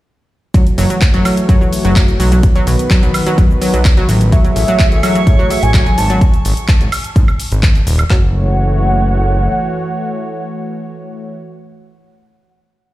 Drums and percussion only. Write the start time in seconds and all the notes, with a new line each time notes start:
0.54 kick, closed hi-hat, shaker
0.67 closed hi-hat, shaker
0.78 open hi-hat, shaker
0.90 closed hi-hat, shaker
1.01 kick, clap, closed hi-hat, shaker
1.14 closed hi-hat, shaker
1.25 open hi-hat, high woodblock, shaker
1.37 closed hi-hat, shaker
1.49 kick, closed hi-hat, shaker
1.62 shaker
1.73 open hi-hat, shaker
1.85 closed hi-hat, shaker
1.96 kick, clap, closed hi-hat, shaker
2.08 closed hi-hat, shaker
2.20 open hi-hat, shaker
2.32 closed hi-hat, shaker
2.43 kick, closed hi-hat, shaker
2.56 closed hi-hat, shaker
2.67 open hi-hat, shaker
2.79 closed hi-hat, shaker
2.91 kick, clap, closed hi-hat, shaker
3.03 closed hi-hat, shaker
3.14 open hi-hat, high woodblock, shaker
3.26 closed hi-hat, shaker
3.38 kick, closed hi-hat, shaker
3.51 shaker
3.62 open hi-hat, shaker
3.74 closed hi-hat, shaker
3.85 kick, clap, closed hi-hat, shaker
3.97 closed hi-hat, shaker
4.09 open hi-hat, shaker
4.21 closed hi-hat, shaker
4.32 kick, closed hi-hat, shaker
4.45 closed hi-hat, shaker
4.56 open hi-hat, shaker
4.68 closed hi-hat, shaker
4.79 kick, clap, closed hi-hat, shaker
4.92 closed hi-hat, shaker
5.03 open hi-hat, high woodblock, shaker
5.15 closed hi-hat, shaker
5.27 kick, closed hi-hat, shaker
5.40 shaker
5.50 open hi-hat, shaker
5.63 closed hi-hat, shaker
5.74 kick, clap, closed hi-hat, shaker
5.86 closed hi-hat, shaker
5.98 open hi-hat, shaker
6.10 closed hi-hat, shaker
6.21 kick, closed hi-hat, shaker
6.34 closed hi-hat, shaker
6.45 open hi-hat, shaker
6.57 closed hi-hat, shaker
6.68 kick, clap, closed hi-hat, shaker
6.81 closed hi-hat, shaker
6.92 open hi-hat, high woodblock, shaker
7.04 closed hi-hat, shaker
7.16 kick, closed hi-hat, shaker
7.28 high woodblock, shaker
7.40 open hi-hat, shaker
7.52 closed hi-hat, shaker
7.63 kick, clap, closed hi-hat, shaker
7.75 closed hi-hat, shaker
7.87 open hi-hat, shaker
7.99 closed hi-hat, high woodblock, shaker
8.10 kick, snare, clap